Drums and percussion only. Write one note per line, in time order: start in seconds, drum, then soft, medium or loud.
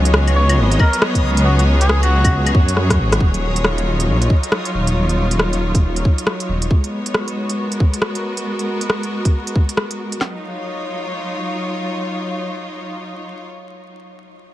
0.05 closed hi-hat medium
0.14 cross-stick loud
0.27 closed hi-hat soft
0.27 claves soft
0.49 closed hi-hat medium
0.49 claves medium
0.72 closed hi-hat soft
0.79 kick loud
0.79 claves medium
0.93 closed hi-hat medium
1.02 cross-stick loud
1.15 kick medium
1.15 closed hi-hat soft
1.37 closed hi-hat medium
1.59 closed hi-hat soft
1.81 closed hi-hat medium
1.89 cross-stick loud
2.03 closed hi-hat soft
2.03 claves soft
2.24 kick loud
2.24 closed hi-hat medium
2.24 claves medium
2.46 closed hi-hat soft
2.46 claves medium
2.55 kick loud
2.68 closed hi-hat medium
2.77 cross-stick medium
2.90 kick medium
2.90 cross-stick medium
2.90 closed hi-hat soft
3.12 cross-stick medium
3.12 closed hi-hat medium
3.21 kick loud
3.34 closed hi-hat soft
3.56 closed hi-hat medium
3.64 cross-stick loud
3.78 closed hi-hat soft
4.00 closed hi-hat medium
4.22 closed hi-hat soft
4.30 kick loud
4.43 closed hi-hat medium
4.52 cross-stick loud
4.65 closed hi-hat soft
4.87 closed hi-hat medium
5.09 closed hi-hat soft
5.31 closed hi-hat medium
5.39 cross-stick loud
5.53 closed hi-hat soft
5.75 kick loud
5.75 closed hi-hat medium
5.96 closed hi-hat soft
6.05 kick loud
6.18 closed hi-hat medium
6.27 cross-stick loud
6.40 closed hi-hat soft
6.62 closed hi-hat medium
6.71 kick loud
6.84 closed hi-hat soft
7.06 closed hi-hat medium
7.14 cross-stick loud
7.28 closed hi-hat soft
7.49 closed hi-hat medium
7.72 closed hi-hat soft
7.80 kick loud
7.94 closed hi-hat medium
8.02 cross-stick loud
8.15 closed hi-hat soft
8.37 closed hi-hat medium
8.59 closed hi-hat soft
8.81 closed hi-hat soft
8.90 cross-stick loud
9.03 closed hi-hat soft
9.25 kick loud
9.25 closed hi-hat soft
9.47 closed hi-hat soft
9.55 kick loud
9.69 closed hi-hat soft
9.77 cross-stick loud
9.91 closed hi-hat soft
10.12 closed hi-hat soft
10.21 snare medium
10.21 clap medium